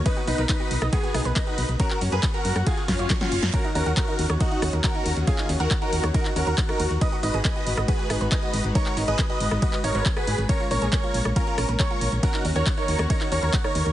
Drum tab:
RD |x---x---x---x---|x---x---x---x---|x---x---x---x---|x---x---x---x---|
HH |xxoxxxoxxxoxxxox|xxoxxxoxxxoxxxox|xxoxxxoxxxoxxxox|xxoxxxoxxxoxxxox|
CP |----x-------x---|-x--x-------x---|----x-------x---|-x--x----x--x---|
SD |-------r--r-----|-------r--o-oo-o|-------r--r-----|-------r-----r--|
BD |o---o---o---o---|o---o---o-o-o---|o---o---o---o---|o---o---o---o---|

RD |x---x---x---x---|x---x---x---x---|x---x---x---x---|x---x---x---x---|
HH |xxoxxxoxxxoxxxox|xxoxxxoxxxoxxxox|xxoxxxoxxxoxxxox|xxoxxxoxxxoxxxox|
CP |----x-------x---|-x--x----x--x---|----x-------x---|-x--x----x--x---|
SD |-------r--r-----|-------r-----r--|-------r--r-----|-------r-----r--|
BD |o---o---o---o---|o---o---o---o---|o---o---o---o---|o---o---o---o---|